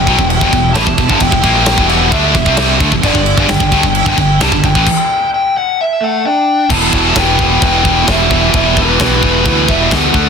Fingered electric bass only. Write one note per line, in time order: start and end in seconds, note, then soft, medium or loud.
0.07 0.18 B1 medium
0.18 0.40 E1 medium
0.42 0.52 E1 medium
0.53 0.74 E1 medium
0.76 0.86 A1 medium
0.86 0.97 E1 medium
0.98 1.09 E1 medium
1.10 1.20 G1 medium
1.21 1.31 E1 medium
1.32 1.43 E1 medium
1.44 1.76 A#1 medium
1.78 2.10 E1 medium
2.12 2.34 D2 medium
2.35 2.46 E1 medium
2.47 2.79 C2 loud
2.80 2.91 D2 medium
2.92 3.03 E1 medium
3.03 3.14 G1 medium
3.15 3.36 G1 medium
3.37 3.49 G1 loud
3.50 3.60 G1 medium
3.60 3.71 G1 medium
3.72 3.83 D2 loud
3.83 4.05 G1 medium
4.06 4.17 G1 loud
4.17 4.39 G1 medium
4.42 4.51 C2 medium
4.52 4.63 G1 medium
4.64 4.75 G1 medium
4.76 4.86 A1 medium
6.70 6.92 E1 medium
6.93 7.14 E1 medium
7.16 7.59 E1 medium
7.62 8.04 E1 medium
8.08 8.50 E1 medium
8.54 8.96 E1 medium
9.00 9.21 B1 medium
9.23 9.44 E1 medium
9.46 9.67 D2 medium
9.69 9.90 E1 medium
9.91 10.13 D2 medium
10.14 10.29 D2 medium